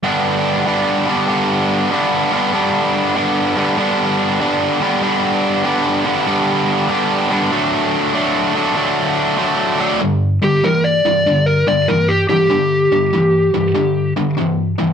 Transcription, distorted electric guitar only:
X:1
M:4/4
L:1/8
Q:"Swing" 1/4=96
K:G
V:1 name="Distorted electric guitar" clef=bass
[G,,D,G,B,D]2 [G,,D,G,B,D] [G,,D,G,B,D] [G,,D,G,B,D]2 [G,,D,G,B,D] [G,,D,G,B,D] | [G,,D,G,B,D]2 [G,,D,G,B,D] [G,,D,G,B,D] [G,,D,G,B,D]2 [G,,D,G,B,D] [G,,D,G,B,D] | [G,,D,G,B,D]2 [G,,D,G,B,D] [G,,D,G,B,D] [G,,D,G,B,D]2 [G,,D,G,B,D] [G,,D,G,B,D] | [D,F,A,D]2 [D,F,A,D] [D,F,A,D] [D,F,A,D]2 [D,F,A,D] [D,F,A,D] |
[G,,D,] [G,,D,] [G,,E,] [G,,E,] [G,,D,] [G,,D,] [G,,E,] [G,,E,] | [G,,D,] [G,,D,] [G,,E,] [G,,E,] [G,,D,] [G,,D,] [G,,E,] [G,,E,] |]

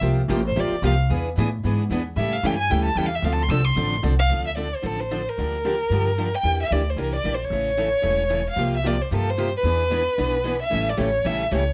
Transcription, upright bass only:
X:1
M:4/4
L:1/8
Q:"Swing" 1/4=225
K:Dm
V:1 name="Upright bass" clef=bass
C,,2 A,,,2 B,,, z C,,2 | E,,2 A,,2 ^G,,2 E,,2 | A,,2 G,,2 D,,2 E,,2 | D,,2 C,,2 A,,,2 C,,2 |
D,,4 A,,,4 | D,,4 G,,4 | E,,2 D,,2 C,,2 B,,,2 | A,,,4 E,,,4 |
C,,4 G,,4 | E,,4 =B,,,4 | A,,,2 A,,,2 B,,,2 ^C,,2 |]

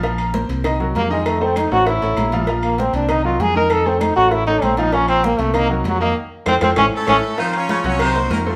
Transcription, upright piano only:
X:1
M:4/4
L:1/8
Q:1/4=196
K:Bbm
V:1 name="Upright piano"
[F,Ff]2 [B,Bc]2 [E,Ee] [G,GB]2 [E,Ee]- | [E,Ee] [=A,=Ac]2 [A,Ad]2 [A,A^c]2 [F,Ff] | [F,Ff]2 [B,Bc]2 [E,Ee] [G,GB]2 [E,Ee]- | [E,Ee] [=A,=Ac]2 [A,Ad]2 [A,A^c]2 [F,Ff] |
[F,Ff]2 [B,Bc]2 [E,Ee] [G,GB]2 [E,Ee] | z2 [F=Ac] [FAc] [=EA^c] z [EAc] z | [F,Ff]2 [F,Ff] [G,Gg]2 [B,Bc]2 [=A,=Ac] |]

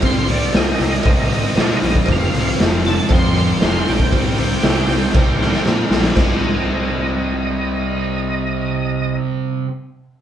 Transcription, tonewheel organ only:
X:1
M:4/4
L:1/8
Q:1/4=117
K:Cm
V:1 name="Tonewheel organ"
c' d e4- e e | f2 z =a c'3 g- | g6 z2 | e8- |
e8 |]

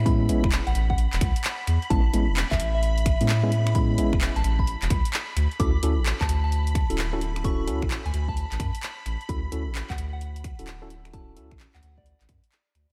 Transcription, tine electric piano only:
X:1
M:4/4
L:1/16
Q:"Swing 16ths" 1/4=130
K:Dlyd
V:1 name="Tine electric piano"
[G,B,CE]2 [G,B,CE] z12 z | [G,B,CE] z [G,B,CE] z8 [G,B,CE] z [G,B,CE] z2 | [G,B,CE]2 [G,B,CE] z12 z | [CEFA] z [CEFA] z8 [CEFA] z [CEFA] z2 |
[CEFA]2 [CEFA] z12 z | [CEFA] z [CEFA] z8 [CEFA] z [CEFA] z2 | [CEFA]2 [CEFA] z12 z |]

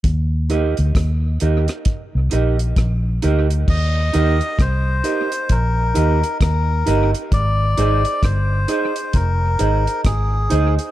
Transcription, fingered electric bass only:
X:1
M:4/4
L:1/16
Q:"Swing 16ths" 1/4=66
K:Eb
V:1 name="Fingered electric bass" clef=bass
E,,3 D,, E,,2 E,, z2 C,, B,,,2 B,,,2 D,,2 | E,,2 E,, z C,,2 z2 B,,,2 E,, z E,,2 G,,, z | A,,,2 A,,, z G,,,2 z2 F,,,2 A,,, z A,,,2 D,, z |]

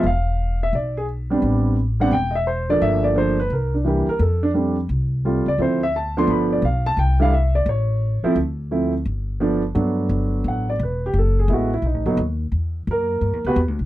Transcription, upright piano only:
X:1
M:4/4
L:1/8
Q:"Swing" 1/4=173
K:Gmix
V:1 name="Upright piano"
f3 e d _A z2 | z3 ^f g [_e=e] c d | e d c B _B D G B | A D z4 z d |
c e a c' b d f a | g f e d ^c4 | z8 | [K:G] z4 f d B G |
A ^G F E ^D3 z | z2 [_B,_B]3 [=B,FG=B] z2 |]
V:2 name="Upright piano"
z6 z [G,B,CD]- | [G,B,CD]2 z [G,B,CD] z3 [F,A,_B,D]- | [F,A,_B,D]2 [F,A,B,D] z3 [E,G,B,D] z | z2 [G,A,CD] z3 [G,A,CF] z |
[F,A,CE] z2 [F,A,B,D]3 z2 | z [G,A,DE] z4 z [F,A,CE] | z2 [F,A,CE] z3 [F,A,B,D] z | [K:G] [F,A,B,D]4- [F,A,B,D] z3 |
z2 [^G,A,B,E] z2 [F,A,B,^D] z2 | z8 |]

